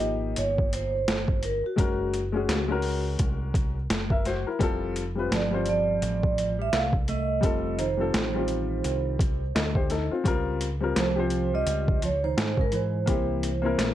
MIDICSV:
0, 0, Header, 1, 7, 480
1, 0, Start_track
1, 0, Tempo, 705882
1, 1210, Time_signature, 4, 2, 24, 8
1, 9479, End_track
2, 0, Start_track
2, 0, Title_t, "Vibraphone"
2, 0, Program_c, 0, 11
2, 0, Note_on_c, 0, 75, 99
2, 261, Note_on_c, 0, 73, 101
2, 273, Note_off_c, 0, 75, 0
2, 479, Note_off_c, 0, 73, 0
2, 504, Note_on_c, 0, 72, 99
2, 950, Note_off_c, 0, 72, 0
2, 985, Note_on_c, 0, 70, 85
2, 1112, Note_off_c, 0, 70, 0
2, 1130, Note_on_c, 0, 66, 76
2, 2055, Note_off_c, 0, 66, 0
2, 3639, Note_on_c, 0, 74, 80
2, 3865, Note_off_c, 0, 74, 0
2, 3874, Note_on_c, 0, 74, 93
2, 4459, Note_off_c, 0, 74, 0
2, 4499, Note_on_c, 0, 76, 102
2, 4577, Note_off_c, 0, 76, 0
2, 4587, Note_on_c, 0, 77, 96
2, 4692, Note_off_c, 0, 77, 0
2, 4823, Note_on_c, 0, 75, 97
2, 5296, Note_on_c, 0, 72, 83
2, 5311, Note_off_c, 0, 75, 0
2, 6226, Note_off_c, 0, 72, 0
2, 7474, Note_on_c, 0, 72, 89
2, 7821, Note_off_c, 0, 72, 0
2, 7853, Note_on_c, 0, 75, 92
2, 8157, Note_off_c, 0, 75, 0
2, 8194, Note_on_c, 0, 73, 97
2, 8254, Note_off_c, 0, 73, 0
2, 8324, Note_on_c, 0, 72, 92
2, 8567, Note_off_c, 0, 72, 0
2, 8575, Note_on_c, 0, 70, 84
2, 8614, Note_off_c, 0, 70, 0
2, 8668, Note_on_c, 0, 72, 84
2, 9479, Note_off_c, 0, 72, 0
2, 9479, End_track
3, 0, Start_track
3, 0, Title_t, "Grand piano"
3, 0, Program_c, 1, 0
3, 0, Note_on_c, 1, 53, 70
3, 0, Note_on_c, 1, 58, 68
3, 0, Note_on_c, 1, 63, 61
3, 0, Note_on_c, 1, 67, 81
3, 624, Note_off_c, 1, 53, 0
3, 627, Note_off_c, 1, 58, 0
3, 633, Note_off_c, 1, 63, 0
3, 637, Note_off_c, 1, 67, 0
3, 1197, Note_on_c, 1, 56, 73
3, 1204, Note_on_c, 1, 61, 64
3, 1216, Note_on_c, 1, 66, 71
3, 1221, Note_on_c, 1, 70, 85
3, 1478, Note_off_c, 1, 56, 0
3, 1481, Note_off_c, 1, 61, 0
3, 1487, Note_off_c, 1, 66, 0
3, 1490, Note_off_c, 1, 70, 0
3, 1580, Note_on_c, 1, 56, 68
3, 1591, Note_on_c, 1, 61, 67
3, 1599, Note_on_c, 1, 66, 62
3, 1609, Note_on_c, 1, 68, 73
3, 1754, Note_off_c, 1, 56, 0
3, 1759, Note_off_c, 1, 61, 0
3, 1763, Note_off_c, 1, 66, 0
3, 1768, Note_off_c, 1, 68, 0
3, 1821, Note_on_c, 1, 56, 81
3, 1832, Note_on_c, 1, 61, 78
3, 1840, Note_on_c, 1, 66, 73
3, 1849, Note_on_c, 1, 70, 91
3, 2542, Note_off_c, 1, 56, 0
3, 2547, Note_off_c, 1, 61, 0
3, 2551, Note_off_c, 1, 66, 0
3, 2556, Note_off_c, 1, 70, 0
3, 2798, Note_on_c, 1, 76, 61
3, 2800, Note_on_c, 1, 70, 54
3, 2887, Note_off_c, 1, 76, 0
3, 2888, Note_off_c, 1, 70, 0
3, 2897, Note_on_c, 1, 72, 70
3, 2901, Note_on_c, 1, 66, 61
3, 3031, Note_off_c, 1, 72, 0
3, 3033, Note_off_c, 1, 66, 0
3, 3039, Note_on_c, 1, 70, 66
3, 3042, Note_on_c, 1, 64, 56
3, 3121, Note_on_c, 1, 55, 93
3, 3129, Note_on_c, 1, 60, 78
3, 3138, Note_on_c, 1, 65, 82
3, 3146, Note_on_c, 1, 69, 104
3, 3265, Note_off_c, 1, 70, 0
3, 3267, Note_off_c, 1, 64, 0
3, 3400, Note_off_c, 1, 55, 0
3, 3404, Note_off_c, 1, 60, 0
3, 3408, Note_off_c, 1, 65, 0
3, 3412, Note_off_c, 1, 69, 0
3, 3504, Note_on_c, 1, 55, 64
3, 3515, Note_on_c, 1, 60, 57
3, 3522, Note_on_c, 1, 65, 61
3, 3529, Note_on_c, 1, 71, 73
3, 3676, Note_off_c, 1, 55, 0
3, 3681, Note_off_c, 1, 60, 0
3, 3685, Note_off_c, 1, 65, 0
3, 3688, Note_off_c, 1, 71, 0
3, 3744, Note_on_c, 1, 55, 70
3, 3753, Note_on_c, 1, 60, 64
3, 3761, Note_on_c, 1, 65, 62
3, 3769, Note_on_c, 1, 72, 71
3, 4463, Note_off_c, 1, 55, 0
3, 4467, Note_off_c, 1, 60, 0
3, 4471, Note_off_c, 1, 65, 0
3, 4475, Note_off_c, 1, 72, 0
3, 5037, Note_on_c, 1, 55, 78
3, 5047, Note_on_c, 1, 60, 65
3, 5057, Note_on_c, 1, 65, 68
3, 5064, Note_on_c, 1, 69, 85
3, 5318, Note_off_c, 1, 55, 0
3, 5322, Note_off_c, 1, 60, 0
3, 5327, Note_off_c, 1, 65, 0
3, 5331, Note_off_c, 1, 69, 0
3, 5421, Note_on_c, 1, 55, 66
3, 5432, Note_on_c, 1, 60, 67
3, 5440, Note_on_c, 1, 65, 58
3, 5447, Note_on_c, 1, 69, 76
3, 5594, Note_off_c, 1, 55, 0
3, 5600, Note_off_c, 1, 60, 0
3, 5604, Note_off_c, 1, 65, 0
3, 5607, Note_off_c, 1, 69, 0
3, 5667, Note_on_c, 1, 55, 71
3, 5675, Note_on_c, 1, 60, 65
3, 5682, Note_on_c, 1, 65, 66
3, 5690, Note_on_c, 1, 67, 76
3, 6385, Note_off_c, 1, 55, 0
3, 6388, Note_off_c, 1, 60, 0
3, 6392, Note_off_c, 1, 65, 0
3, 6396, Note_off_c, 1, 67, 0
3, 6495, Note_on_c, 1, 75, 59
3, 6498, Note_on_c, 1, 69, 50
3, 6630, Note_off_c, 1, 75, 0
3, 6632, Note_off_c, 1, 69, 0
3, 6634, Note_on_c, 1, 72, 67
3, 6639, Note_on_c, 1, 67, 59
3, 6725, Note_off_c, 1, 72, 0
3, 6728, Note_off_c, 1, 67, 0
3, 6736, Note_on_c, 1, 69, 69
3, 6741, Note_on_c, 1, 63, 62
3, 6871, Note_off_c, 1, 69, 0
3, 6873, Note_off_c, 1, 63, 0
3, 6877, Note_on_c, 1, 65, 73
3, 6882, Note_on_c, 1, 60, 60
3, 6960, Note_off_c, 1, 60, 0
3, 6962, Note_on_c, 1, 55, 82
3, 6970, Note_off_c, 1, 65, 0
3, 6970, Note_on_c, 1, 60, 75
3, 6980, Note_on_c, 1, 65, 89
3, 6988, Note_on_c, 1, 70, 93
3, 7240, Note_off_c, 1, 55, 0
3, 7244, Note_off_c, 1, 60, 0
3, 7249, Note_off_c, 1, 65, 0
3, 7253, Note_off_c, 1, 70, 0
3, 7347, Note_on_c, 1, 55, 69
3, 7353, Note_on_c, 1, 60, 68
3, 7362, Note_on_c, 1, 65, 66
3, 7369, Note_on_c, 1, 70, 79
3, 7517, Note_off_c, 1, 55, 0
3, 7520, Note_off_c, 1, 60, 0
3, 7525, Note_off_c, 1, 65, 0
3, 7528, Note_off_c, 1, 70, 0
3, 7586, Note_on_c, 1, 67, 74
3, 7595, Note_on_c, 1, 60, 64
3, 7602, Note_on_c, 1, 65, 68
3, 7612, Note_on_c, 1, 72, 77
3, 8304, Note_off_c, 1, 67, 0
3, 8309, Note_off_c, 1, 60, 0
3, 8312, Note_off_c, 1, 65, 0
3, 8317, Note_off_c, 1, 72, 0
3, 8880, Note_on_c, 1, 58, 74
3, 8889, Note_on_c, 1, 60, 69
3, 8896, Note_on_c, 1, 64, 64
3, 8906, Note_on_c, 1, 67, 84
3, 9159, Note_off_c, 1, 58, 0
3, 9164, Note_off_c, 1, 60, 0
3, 9167, Note_off_c, 1, 64, 0
3, 9172, Note_off_c, 1, 67, 0
3, 9260, Note_on_c, 1, 58, 83
3, 9269, Note_on_c, 1, 60, 70
3, 9280, Note_on_c, 1, 64, 75
3, 9288, Note_on_c, 1, 70, 86
3, 9434, Note_off_c, 1, 58, 0
3, 9438, Note_off_c, 1, 60, 0
3, 9444, Note_off_c, 1, 64, 0
3, 9448, Note_off_c, 1, 70, 0
3, 9479, End_track
4, 0, Start_track
4, 0, Title_t, "Clean electric guitar"
4, 0, Program_c, 2, 27
4, 3629, Note_on_c, 2, 53, 68
4, 3844, Note_off_c, 2, 53, 0
4, 3864, Note_on_c, 2, 53, 79
4, 4455, Note_off_c, 2, 53, 0
4, 4481, Note_on_c, 2, 55, 76
4, 4567, Note_off_c, 2, 55, 0
4, 4575, Note_on_c, 2, 57, 89
4, 4639, Note_off_c, 2, 57, 0
4, 4819, Note_on_c, 2, 57, 78
4, 5268, Note_off_c, 2, 57, 0
4, 5298, Note_on_c, 2, 51, 71
4, 6227, Note_off_c, 2, 51, 0
4, 7467, Note_on_c, 2, 53, 82
4, 7817, Note_off_c, 2, 53, 0
4, 7847, Note_on_c, 2, 55, 92
4, 8154, Note_off_c, 2, 55, 0
4, 8181, Note_on_c, 2, 53, 83
4, 8219, Note_off_c, 2, 53, 0
4, 8323, Note_on_c, 2, 51, 69
4, 8543, Note_off_c, 2, 51, 0
4, 8559, Note_on_c, 2, 49, 74
4, 8593, Note_off_c, 2, 49, 0
4, 8653, Note_on_c, 2, 52, 74
4, 9479, Note_off_c, 2, 52, 0
4, 9479, End_track
5, 0, Start_track
5, 0, Title_t, "Picked electric bass"
5, 0, Program_c, 3, 34
5, 0, Note_on_c, 3, 32, 111
5, 228, Note_off_c, 3, 32, 0
5, 256, Note_on_c, 3, 31, 92
5, 710, Note_off_c, 3, 31, 0
5, 734, Note_on_c, 3, 31, 94
5, 1098, Note_off_c, 3, 31, 0
5, 1211, Note_on_c, 3, 30, 106
5, 1667, Note_off_c, 3, 30, 0
5, 1690, Note_on_c, 3, 37, 99
5, 2146, Note_off_c, 3, 37, 0
5, 2171, Note_on_c, 3, 36, 84
5, 2627, Note_off_c, 3, 36, 0
5, 2651, Note_on_c, 3, 30, 89
5, 3016, Note_off_c, 3, 30, 0
5, 3131, Note_on_c, 3, 29, 101
5, 3587, Note_off_c, 3, 29, 0
5, 3613, Note_on_c, 3, 31, 96
5, 4068, Note_off_c, 3, 31, 0
5, 4094, Note_on_c, 3, 33, 88
5, 4549, Note_off_c, 3, 33, 0
5, 4575, Note_on_c, 3, 36, 83
5, 5029, Note_off_c, 3, 36, 0
5, 5052, Note_on_c, 3, 29, 107
5, 5507, Note_off_c, 3, 29, 0
5, 5536, Note_on_c, 3, 33, 105
5, 5989, Note_off_c, 3, 33, 0
5, 6015, Note_on_c, 3, 36, 93
5, 6469, Note_off_c, 3, 36, 0
5, 6497, Note_on_c, 3, 38, 98
5, 6859, Note_off_c, 3, 38, 0
5, 6973, Note_on_c, 3, 37, 105
5, 7428, Note_off_c, 3, 37, 0
5, 7453, Note_on_c, 3, 36, 108
5, 7908, Note_off_c, 3, 36, 0
5, 7931, Note_on_c, 3, 37, 94
5, 8387, Note_off_c, 3, 37, 0
5, 8414, Note_on_c, 3, 44, 91
5, 8868, Note_off_c, 3, 44, 0
5, 8893, Note_on_c, 3, 36, 102
5, 9348, Note_off_c, 3, 36, 0
5, 9371, Note_on_c, 3, 34, 93
5, 9479, Note_off_c, 3, 34, 0
5, 9479, End_track
6, 0, Start_track
6, 0, Title_t, "Muted picked electric bass strokes"
6, 1116, Note_on_c, 9, 29, 46
6, 1184, Note_off_c, 9, 29, 0
6, 3039, Note_on_c, 9, 29, 42
6, 3107, Note_off_c, 9, 29, 0
6, 6881, Note_on_c, 9, 29, 45
6, 6949, Note_off_c, 9, 29, 0
6, 9479, End_track
7, 0, Start_track
7, 0, Title_t, "Drums"
7, 0, Note_on_c, 9, 42, 53
7, 66, Note_off_c, 9, 42, 0
7, 247, Note_on_c, 9, 42, 85
7, 315, Note_off_c, 9, 42, 0
7, 397, Note_on_c, 9, 36, 94
7, 465, Note_off_c, 9, 36, 0
7, 495, Note_on_c, 9, 42, 88
7, 563, Note_off_c, 9, 42, 0
7, 734, Note_on_c, 9, 38, 111
7, 734, Note_on_c, 9, 42, 82
7, 802, Note_off_c, 9, 38, 0
7, 802, Note_off_c, 9, 42, 0
7, 871, Note_on_c, 9, 36, 85
7, 939, Note_off_c, 9, 36, 0
7, 970, Note_on_c, 9, 42, 71
7, 1038, Note_off_c, 9, 42, 0
7, 1210, Note_on_c, 9, 36, 104
7, 1213, Note_on_c, 9, 42, 85
7, 1278, Note_off_c, 9, 36, 0
7, 1281, Note_off_c, 9, 42, 0
7, 1452, Note_on_c, 9, 42, 71
7, 1520, Note_off_c, 9, 42, 0
7, 1693, Note_on_c, 9, 38, 105
7, 1694, Note_on_c, 9, 42, 88
7, 1761, Note_off_c, 9, 38, 0
7, 1762, Note_off_c, 9, 42, 0
7, 1919, Note_on_c, 9, 46, 37
7, 1987, Note_off_c, 9, 46, 0
7, 2169, Note_on_c, 9, 42, 81
7, 2173, Note_on_c, 9, 36, 80
7, 2237, Note_off_c, 9, 42, 0
7, 2241, Note_off_c, 9, 36, 0
7, 2408, Note_on_c, 9, 36, 97
7, 2414, Note_on_c, 9, 42, 82
7, 2476, Note_off_c, 9, 36, 0
7, 2482, Note_off_c, 9, 42, 0
7, 2653, Note_on_c, 9, 38, 99
7, 2653, Note_on_c, 9, 42, 88
7, 2721, Note_off_c, 9, 38, 0
7, 2721, Note_off_c, 9, 42, 0
7, 2790, Note_on_c, 9, 36, 90
7, 2858, Note_off_c, 9, 36, 0
7, 2892, Note_on_c, 9, 42, 70
7, 2898, Note_on_c, 9, 38, 34
7, 2960, Note_off_c, 9, 42, 0
7, 2966, Note_off_c, 9, 38, 0
7, 3130, Note_on_c, 9, 36, 93
7, 3133, Note_on_c, 9, 42, 87
7, 3198, Note_off_c, 9, 36, 0
7, 3201, Note_off_c, 9, 42, 0
7, 3372, Note_on_c, 9, 42, 83
7, 3440, Note_off_c, 9, 42, 0
7, 3618, Note_on_c, 9, 38, 99
7, 3618, Note_on_c, 9, 42, 84
7, 3686, Note_off_c, 9, 38, 0
7, 3686, Note_off_c, 9, 42, 0
7, 3846, Note_on_c, 9, 42, 61
7, 3914, Note_off_c, 9, 42, 0
7, 4095, Note_on_c, 9, 42, 84
7, 4163, Note_off_c, 9, 42, 0
7, 4239, Note_on_c, 9, 36, 98
7, 4307, Note_off_c, 9, 36, 0
7, 4339, Note_on_c, 9, 42, 80
7, 4407, Note_off_c, 9, 42, 0
7, 4576, Note_on_c, 9, 38, 105
7, 4576, Note_on_c, 9, 42, 82
7, 4644, Note_off_c, 9, 38, 0
7, 4644, Note_off_c, 9, 42, 0
7, 4711, Note_on_c, 9, 36, 88
7, 4779, Note_off_c, 9, 36, 0
7, 4814, Note_on_c, 9, 42, 64
7, 4882, Note_off_c, 9, 42, 0
7, 5051, Note_on_c, 9, 36, 91
7, 5054, Note_on_c, 9, 42, 81
7, 5119, Note_off_c, 9, 36, 0
7, 5122, Note_off_c, 9, 42, 0
7, 5295, Note_on_c, 9, 42, 82
7, 5363, Note_off_c, 9, 42, 0
7, 5536, Note_on_c, 9, 38, 107
7, 5537, Note_on_c, 9, 42, 82
7, 5604, Note_off_c, 9, 38, 0
7, 5605, Note_off_c, 9, 42, 0
7, 5765, Note_on_c, 9, 42, 55
7, 5833, Note_off_c, 9, 42, 0
7, 6014, Note_on_c, 9, 42, 82
7, 6082, Note_off_c, 9, 42, 0
7, 6252, Note_on_c, 9, 36, 108
7, 6260, Note_on_c, 9, 42, 84
7, 6320, Note_off_c, 9, 36, 0
7, 6328, Note_off_c, 9, 42, 0
7, 6500, Note_on_c, 9, 38, 114
7, 6500, Note_on_c, 9, 42, 75
7, 6568, Note_off_c, 9, 38, 0
7, 6568, Note_off_c, 9, 42, 0
7, 6631, Note_on_c, 9, 36, 84
7, 6699, Note_off_c, 9, 36, 0
7, 6731, Note_on_c, 9, 42, 64
7, 6736, Note_on_c, 9, 38, 32
7, 6799, Note_off_c, 9, 42, 0
7, 6804, Note_off_c, 9, 38, 0
7, 6972, Note_on_c, 9, 36, 102
7, 6974, Note_on_c, 9, 42, 94
7, 7040, Note_off_c, 9, 36, 0
7, 7042, Note_off_c, 9, 42, 0
7, 7213, Note_on_c, 9, 42, 83
7, 7281, Note_off_c, 9, 42, 0
7, 7454, Note_on_c, 9, 38, 97
7, 7455, Note_on_c, 9, 42, 91
7, 7522, Note_off_c, 9, 38, 0
7, 7523, Note_off_c, 9, 42, 0
7, 7686, Note_on_c, 9, 42, 59
7, 7754, Note_off_c, 9, 42, 0
7, 7933, Note_on_c, 9, 42, 88
7, 8001, Note_off_c, 9, 42, 0
7, 8079, Note_on_c, 9, 36, 99
7, 8147, Note_off_c, 9, 36, 0
7, 8175, Note_on_c, 9, 42, 86
7, 8243, Note_off_c, 9, 42, 0
7, 8417, Note_on_c, 9, 38, 106
7, 8417, Note_on_c, 9, 42, 80
7, 8485, Note_off_c, 9, 38, 0
7, 8485, Note_off_c, 9, 42, 0
7, 8551, Note_on_c, 9, 36, 83
7, 8619, Note_off_c, 9, 36, 0
7, 8648, Note_on_c, 9, 42, 66
7, 8716, Note_off_c, 9, 42, 0
7, 8891, Note_on_c, 9, 36, 92
7, 8891, Note_on_c, 9, 42, 85
7, 8959, Note_off_c, 9, 36, 0
7, 8959, Note_off_c, 9, 42, 0
7, 9133, Note_on_c, 9, 42, 79
7, 9201, Note_off_c, 9, 42, 0
7, 9375, Note_on_c, 9, 38, 98
7, 9376, Note_on_c, 9, 42, 91
7, 9443, Note_off_c, 9, 38, 0
7, 9444, Note_off_c, 9, 42, 0
7, 9479, End_track
0, 0, End_of_file